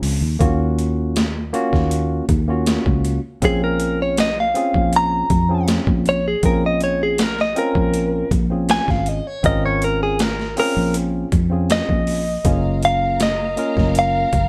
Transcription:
Already playing: tine electric piano C4 C#4 F4 G#4
0.02 fingered electric bass C#2, open hi-hat
0.21 fingered electric bass D#2
0.39 fingered electric bass D#2, tine electric piano A#3 C#4 F4 F#4, kick, closed hi-hat
0.79 closed hi-hat
1.16 snare, closed hi-hat
1.53 tine electric piano A#3 C#4 F4 F#4, closed hi-hat
1.73 fingered electric bass D#2, kick, snare
1.91 closed hi-hat
2.29 fingered electric bass D#2, kick, closed hi-hat
2.48 tine electric piano A#3 C#4 F4 F#4
2.66 snare, closed hi-hat
2.86 fingered electric bass C#2, kick
3.05 closed hi-hat
3.42 fingered electric bass A#1, tine electric piano C4 C#4 F4 G#4, clean electric guitar G#4, kick, closed hi-hat
3.64 clean electric guitar A#4
3.80 closed hi-hat
4.02 clean electric guitar C#5
4.17 clean electric guitar D#5, snare, closed hi-hat
4.40 clean electric guitar F5
4.54 tine electric piano C4 C#4 F4 G#4, closed hi-hat
4.74 fingered electric bass A#1, kick
4.93 clean electric guitar A#5, closed hi-hat
5.30 fingered electric bass F2, kick, closed hi-hat
5.49 tine electric piano C4 C#4 F4 G#4
5.68 snare, closed hi-hat
5.87 fingered electric bass A#1, kick
6.06 clean electric guitar C#5, closed hi-hat
6.28 clean electric guitar G#4
6.43 fingered electric bass A#1, tine electric piano C4 C#4 F4 G#4, clean electric guitar A#4, kick, closed hi-hat
6.66 clean electric guitar D#5
6.81 clean electric guitar C#5, closed hi-hat
7.03 clean electric guitar G#4
7.18 clean electric guitar A#4, snare, closed hi-hat
7.39 clean electric guitar D#5, snare
7.56 tine electric piano C4 C#4 F4 A#4, clean electric guitar A#4, closed hi-hat
7.75 fingered electric bass A#1, kick
7.94 closed hi-hat
8.31 fingered electric bass A#1, kick, closed hi-hat
8.50 tine electric piano C4 C#4 F4 G#4
8.69 clean electric guitar G#5, snare, closed hi-hat
8.88 fingered electric bass G#1, clean electric guitar F5, kick, snare
9.06 clean electric guitar D#5, closed hi-hat
9.27 clean electric guitar C#5
9.43 fingered electric bass G#1, tine electric piano C4 C#4 F4 A#4, clean electric guitar D#5, kick, closed hi-hat
9.66 clean electric guitar C#5
9.82 clean electric guitar A#4, closed hi-hat
10.03 clean electric guitar G#4
10.19 clean electric guitar A#4, snare, closed hi-hat
10.40 snare
10.56 tine electric piano C4 C#4 F4 G#4, clean electric guitar A#4, open hi-hat
10.77 fingered electric bass A#1
10.94 closed hi-hat
11.32 fingered electric bass F2, kick, closed hi-hat
11.50 tine electric piano C4 C#4 F4 G#4
11.70 clean electric guitar D#5, snare, closed hi-hat
11.89 fingered electric bass A#1, kick
12.07 open hi-hat
12.44 fingered electric bass F#1, tine electric piano A#3 C#4 F4 G#4, string section A#4 F5 A#5, kick, closed hi-hat
12.83 clean electric guitar F5, closed hi-hat
13.20 clean electric guitar D#5, snare, closed hi-hat
13.57 tine electric piano A#3 C#4 F4 A#4, closed hi-hat
13.77 fingered electric bass F#1, kick, snare
13.95 clean electric guitar F5, closed hi-hat
14.33 fingered electric bass F#1, kick, closed hi-hat

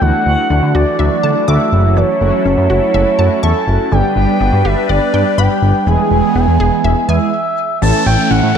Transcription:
0.01 analog synth bass D2, synth arpeggio sound E3, analog synth pad E3 F#3 D4, analog polysynth A3 D4 E4 F#4, analog synth lead F#5
0.26 analog synth bass D2, analog polysynth A3 D4 E4 F#4, analog synth lead F#5
0.50 analog synth bass D2, analog polysynth A3 D4 E4 F#4, synth arpeggio sound D4
0.63 analog synth bass D3
0.75 analog synth bass D2, analog polysynth A3 D4 E4 F#4, synth arpeggio sound F#4, analog synth lead D5
0.99 analog synth bass D2, analog polysynth A3 D4 E4 F#4, analog synth lead D5, synth arpeggio sound E5
1.23 analog synth bass D3, analog polysynth A3 D4 E4 F#4, synth arpeggio sound A5
1.48 analog synth bass D2, analog polysynth A3 D4 E4 F#4, analog synth lead E5, synth arpeggio sound D6
1.72 analog synth bass F#1, analog polysynth A3 C#4 E4 F#4, analog synth pad E4 A4
1.97 synth arpeggio sound E3, analog synth lead C#5
2.21 analog synth bass F#1, analog polysynth A3 C#4 E4 F#4
2.45 analog synth bass F#1, analog polysynth A3 C#4 E4 F#4, synth arpeggio sound C#4, analog synth lead C#5
2.58 analog synth bass F#2
2.70 analog synth bass F#1, analog polysynth A3 C#4 E4 F#4, synth arpeggio sound F#4
2.94 analog synth bass F#1, analog polysynth A3 C#4 E4 F#4, synth arpeggio sound E5
3.19 analog synth bass F#2, analog polysynth A3 C#4 E4 F#4, synth arpeggio sound A5
3.43 analog synth bass E2, analog polysynth A3 C#4 E4 A4, analog synth lead A5, synth arpeggio sound C#6
3.67 analog synth bass F#1, analog polysynth A3 C#4 E4 F#4
3.92 analog synth bass G1, synth arpeggio sound D3, analog polysynth G3 B3 D4 G4, analog synth pad G3 D4 B4, analog synth lead G5
4.16 analog synth bass G1, analog polysynth G3 B3 D4 G4, analog synth lead G5
4.40 analog synth bass G1, analog polysynth G3 B3 D4 F#4, synth arpeggio sound B3
4.53 analog synth bass G2
4.65 analog synth bass G1, analog polysynth G3 B3 D4 G4, synth arpeggio sound G4, analog synth lead E5
4.89 analog synth bass G1, analog polysynth G3 B3 D4 G4, synth arpeggio sound D5, analog synth lead D5
5.14 analog synth bass G2, analog polysynth G3 B3 D4 G4, synth arpeggio sound G5
5.38 analog synth bass G1, analog polysynth G3 B3 D4 G4, analog synth lead G5, synth arpeggio sound B5
5.62 analog synth bass G1, analog polysynth G3 B3 D4 G4
5.87 analog synth bass E1, analog synth pad E3 B3 G#4, synth arpeggio sound E3, analog polysynth G#3 B3 E4 G#4, analog synth lead G#5
6.11 analog synth bass E1, analog polysynth G#3 B3 E4 G#4
6.35 analog synth bass E1, analog polysynth G#3 B3 E4 G#4, synth arpeggio sound B3, analog synth lead G#5
6.48 analog synth bass E2
6.60 analog synth bass E1, analog polysynth G#3 B3 E4 G#4, synth arpeggio sound G#4
6.84 analog synth bass E1, analog polysynth G#3 B3 E4 G#4, synth arpeggio sound E5
7.08 analog synth bass E2, analog polysynth G#3 B3 E4 G#4, analog synth lead E5, synth arpeggio sound G#5
7.82 analog synth bass A1, analog polysynth E3 A3 C#4 E4 A4, synth arpeggio sound E3, analog synth pad A3 C#4 E4, analog synth lead A5, downlifter
8.06 analog synth bass A1, analog polysynth E3 A3 C#4 E4 A4, synth arpeggio sound A3, analog synth lead G5
8.31 analog synth bass A1, analog polysynth E3 A3 C#4 E4 A4, synth arpeggio sound C#4, analog synth lead F#5
8.43 analog synth bass A2

